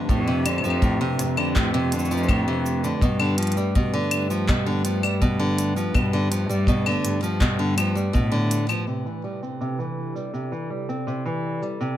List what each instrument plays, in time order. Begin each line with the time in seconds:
Already playing: ambient pad A3 D4 G4 B4
0.09 cello F2, nylon-string guitar A2, kick, cabasa
0.27 nylon-string guitar C3
0.45 nylon-string guitar D3, closed hi-hat, cabasa, claves
0.58 claves
0.64 cello F2, nylon-string guitar F3, cabasa
0.70 claves
0.82 nylon-string guitar A2, kick, cabasa
1.01 nylon-string guitar C3
1.19 cello F2, closed hi-hat, cabasa
1.37 nylon-string guitar D3, claves
1.56 nylon-string guitar A2, kick, clap, cabasa
1.74 nylon-string guitar C3
1.92 nylon-string guitar D3, closed hi-hat, cabasa
1.99 cabasa
2.05 cabasa
2.11 nylon-string guitar F3, cabasa
2.17 cabasa
2.23 cabasa
2.29 nylon-string guitar A2, kick, cabasa, claves
2.48 nylon-string guitar C3
2.66 cabasa
2.84 nylon-string guitar D3, cabasa
3.01 cello G2, nylon-string guitar B2, kick, cabasa
3.20 nylon-string guitar D3, claves
3.38 nylon-string guitar F3, closed hi-hat
3.43 closed hi-hat
3.47 closed hi-hat
3.52 closed hi-hat
3.57 nylon-string guitar G3, cabasa
3.75 nylon-string guitar B2, kick, cabasa
3.94 nylon-string guitar D3
4.11 cello G2, closed hi-hat, cabasa, claves
4.30 nylon-string guitar F3, cabasa
4.48 nylon-string guitar B2, kick, clap, cabasa
4.66 nylon-string guitar D3
4.85 nylon-string guitar F3, closed hi-hat, cabasa
5.03 nylon-string guitar G3, cabasa, claves
5.21 nylon-string guitar B2, kick, cabasa
5.39 nylon-string guitar D3
5.58 closed hi-hat, cabasa
5.76 nylon-string guitar F3, cabasa
5.94 cello G2, nylon-string guitar B2, kick, cabasa, claves
6.13 nylon-string guitar D3
6.31 nylon-string guitar F3, closed hi-hat, cabasa
6.49 cello G2, nylon-string guitar G3, cabasa
6.67 nylon-string guitar B2, kick, cabasa
6.86 nylon-string guitar D3, claves
7.04 cello G2, closed hi-hat, cabasa
7.23 nylon-string guitar F3, cabasa
7.40 nylon-string guitar B2, kick, clap, cabasa
7.59 nylon-string guitar D3
7.77 nylon-string guitar F3, closed hi-hat, cabasa, claves
7.95 nylon-string guitar G3, cabasa
8.13 cello A2, nylon-string guitar B2, kick, cabasa
8.32 nylon-string guitar D3
8.51 closed hi-hat, cabasa
8.69 nylon-string guitar F3, cabasa, claves
8.87 nylon-string guitar C3, ambient pad C3, cabasa
9.05 nylon-string guitar E3, ambient pad E4, cabasa
9.10 ambient pad A4
9.24 nylon-string guitar G3
9.42 nylon-string guitar C4, cabasa
9.61 nylon-string guitar C3, cabasa
9.79 nylon-string guitar E3, cabasa
9.94 ambient pad D5
10.15 nylon-string guitar G3, cabasa
10.33 nylon-string guitar C3, cabasa
10.52 nylon-string guitar E3, cabasa
10.70 nylon-string guitar G3
10.89 nylon-string guitar C4, cabasa
11.07 nylon-string guitar C3, cabasa
11.25 nylon-string guitar E3, cabasa
11.62 nylon-string guitar G3, cabasa
11.81 nylon-string guitar C3, cabasa